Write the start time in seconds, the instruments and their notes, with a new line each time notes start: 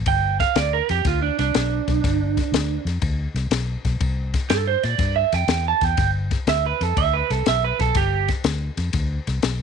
0.06 fingered electric bass G1, clean electric guitar G5, kick, ride
0.40 clean electric guitar F5, kick, snare, ride
0.56 fingered electric bass D2, clean electric guitar D5, snare, ride
0.73 clean electric guitar A#4
0.89 fingered electric bass F2, clean electric guitar G4, snare, ride
1.05 fingered electric bass D2, clean electric guitar F4, kick, snare, ride
1.22 clean electric guitar D4
1.39 fingered electric bass C2, clean electric guitar D4, snare, ride
1.54 fingered electric bass B1, snare, ride
1.88 fingered electric bass B1, kick, snare, ride
2.04 fingered electric bass G1, kick, snare, ride
2.37 kick, snare, ride
2.52 fingered electric bass D2, snare, ride
2.85 fingered electric bass F2, snare, ride
3.02 fingered electric bass D2, kick, ride
3.34 fingered electric bass C2, snare, ride
3.51 fingered electric bass B1, snare, ride
3.85 fingered electric bass B1, kick, snare, ride
4.00 fingered electric bass C2, kick, ride
4.34 kick, snare, ride
4.50 fingered electric bass G2, clean electric guitar A4, snare, ride
4.68 clean electric guitar C5
4.83 fingered electric bass A#2, clean electric guitar D5, snare, ride
4.98 fingered electric bass G2, kick, snare, ride
5.16 clean electric guitar E5
5.32 fingered electric bass F2, clean electric guitar G5, snare, ride
5.48 fingered electric bass E2, snare, ride
5.68 clean electric guitar A5
5.81 fingered electric bass E2, clean electric guitar G5, kick, snare, ride
5.97 fingered electric bass G1, kick, snare, ride
6.31 kick, snare, ride
6.47 fingered electric bass D2, clean electric guitar E5, snare, ride
6.66 clean electric guitar B4
6.81 fingered electric bass F2, clean electric guitar A4, snare, ride
6.97 fingered electric bass D2, clean electric guitar E5, kick, ride
7.13 clean electric guitar B4
7.30 fingered electric bass C2, clean electric guitar A4, snare, ride
7.46 fingered electric bass B1, clean electric guitar E5, snare, ride
7.64 clean electric guitar B4
7.79 fingered electric bass B1, clean electric guitar A4, kick, snare, ride
7.95 fingered electric bass G1, clean electric guitar G4, kick, snare, ride
8.28 kick, snare, ride
8.44 fingered electric bass D2, snare, ride
8.77 fingered electric bass F2, snare, ride
8.93 fingered electric bass D2, kick, snare, ride
9.27 fingered electric bass C2, snare, ride
9.42 fingered electric bass B1, snare, ride